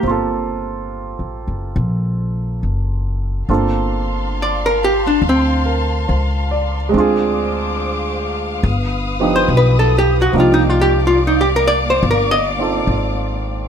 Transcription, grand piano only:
0.00 3.47 A#3 soft
0.00 3.48 C4 soft
0.07 3.49 F4 soft
0.07 3.49 A4 medium
3.50 6.94 A#3 soft
3.50 6.90 C4 soft
3.50 6.93 D4 soft
3.50 6.94 F4 soft
3.50 6.94 A4 medium
5.66 6.26 A#4 soft
6.08 6.75 C5 soft
6.51 7.11 D5 soft
6.89 8.62 G#3 medium
6.89 8.63 C4 soft
6.94 8.65 D4 medium
6.94 8.66 F4 medium
7.00 8.67 G#4 medium
9.20 10.31 F3 soft
9.20 10.34 B3 soft
9.20 10.33 D4 soft
9.20 10.34 D#4 soft
9.20 10.34 G4 soft
10.32 13.68 F3 medium
10.32 13.68 A#3 soft
10.32 13.68 D4 soft
10.32 12.58 D#4 soft
10.38 13.68 G4 medium
12.59 13.68 C4 soft
12.59 13.68 D#4 soft
12.59 13.68 F4 soft
12.59 13.68 A4 soft

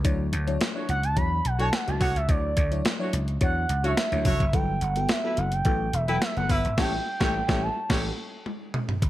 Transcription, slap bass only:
0.05 0.28 D2 loud
0.33 0.56 D2 medium
0.89 1.17 C#2 medium
1.17 1.40 E2 loud
1.45 1.68 B1 medium
1.88 1.99 C#2 medium
2.01 2.13 C2 loud
2.16 2.27 C#2 loud
2.29 2.52 D2 loud
2.57 2.80 D2 loud
3.13 3.37 C#2 medium
3.41 3.65 E2 loud
3.69 3.93 C#2 medium
4.12 4.23 D2 medium
4.25 4.38 F1 medium
4.40 4.51 F#1 medium
4.53 4.77 G1 loud
4.81 5.05 G1 loud
5.38 5.61 F#1 medium
5.65 5.89 A1 loud
5.93 6.17 E1 medium
6.37 6.48 F#1 medium
6.49 6.62 G1 loud
6.65 6.76 G#1 loud
6.78 6.97 A1 loud
7.21 7.39 A1 loud
7.49 7.68 A1 loud
7.90 8.09 A1 loud
9.02 9.10 G1 loud

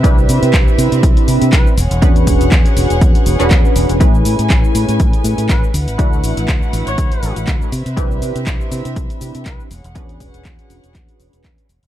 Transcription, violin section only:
0.00 1.76 C4 medium
0.00 1.76 B4 medium
0.00 1.76 E5 medium
1.77 3.98 G#4 medium
1.77 3.98 C#5 medium
1.77 3.98 F#5 medium
4.01 5.72 C#4 medium
4.01 9.67 B4 medium
4.01 5.72 G#5 medium
5.74 7.70 E4 medium
5.74 7.71 F#5 medium
7.72 9.69 C4 medium
7.72 9.69 E5 medium
9.71 11.87 G#4 medium
9.71 11.87 C#5 medium
9.71 11.87 F#5 loud

